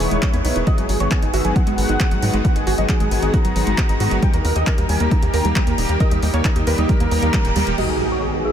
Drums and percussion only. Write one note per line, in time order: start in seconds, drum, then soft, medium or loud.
0.00 open hi-hat loud
0.11 closed hi-hat medium
0.22 kick loud
0.22 clap loud
0.22 closed hi-hat medium
0.34 closed hi-hat medium
0.45 open hi-hat loud
0.56 closed hi-hat medium
0.67 kick loud
0.67 closed hi-hat medium
0.78 closed hi-hat medium
0.89 open hi-hat loud
1.00 closed hi-hat medium
1.11 kick loud
1.11 clap loud
1.11 closed hi-hat medium
1.22 closed hi-hat medium
1.34 open hi-hat loud
1.45 closed hi-hat medium
1.56 kick loud
1.56 closed hi-hat medium
1.67 closed hi-hat medium
1.78 open hi-hat loud
1.89 closed hi-hat medium
2.00 kick loud
2.00 clap loud
2.00 closed hi-hat medium
2.11 closed hi-hat medium
2.22 open hi-hat loud
2.34 closed hi-hat medium
2.45 kick loud
2.45 closed hi-hat medium
2.56 closed hi-hat medium
2.67 open hi-hat loud
2.78 closed hi-hat medium
2.89 kick loud
2.89 clap loud
2.89 closed hi-hat medium
3.00 closed hi-hat medium
3.11 open hi-hat loud
3.23 closed hi-hat medium
3.34 kick loud
3.34 closed hi-hat medium
3.45 closed hi-hat medium
3.56 open hi-hat loud
3.67 closed hi-hat medium
3.78 kick loud
3.78 clap loud
3.78 closed hi-hat medium
3.89 closed hi-hat medium
4.00 open hi-hat loud
4.11 closed hi-hat medium
4.22 kick loud
4.22 closed hi-hat medium
4.34 closed hi-hat medium
4.45 open hi-hat loud
4.56 closed hi-hat medium
4.67 kick loud
4.67 clap loud
4.67 closed hi-hat medium
4.78 closed hi-hat medium
4.89 open hi-hat loud
5.00 closed hi-hat medium
5.11 kick loud
5.11 closed hi-hat medium
5.23 closed hi-hat medium
5.34 open hi-hat loud
5.45 closed hi-hat medium
5.56 kick loud
5.56 clap loud
5.56 closed hi-hat medium
5.67 closed hi-hat medium
5.78 open hi-hat loud
5.89 closed hi-hat medium
6.00 kick loud
6.00 closed hi-hat medium
6.11 closed hi-hat medium
6.23 open hi-hat loud
6.34 closed hi-hat medium
6.45 kick loud
6.45 clap loud
6.45 closed hi-hat medium
6.56 closed hi-hat medium
6.67 open hi-hat loud
6.78 closed hi-hat medium
6.89 kick loud
6.89 closed hi-hat medium
7.00 closed hi-hat medium
7.11 open hi-hat loud
7.23 closed hi-hat medium
7.34 kick loud
7.34 clap loud
7.34 closed hi-hat medium
7.45 closed hi-hat medium
7.56 open hi-hat loud
7.67 closed hi-hat medium
7.78 crash medium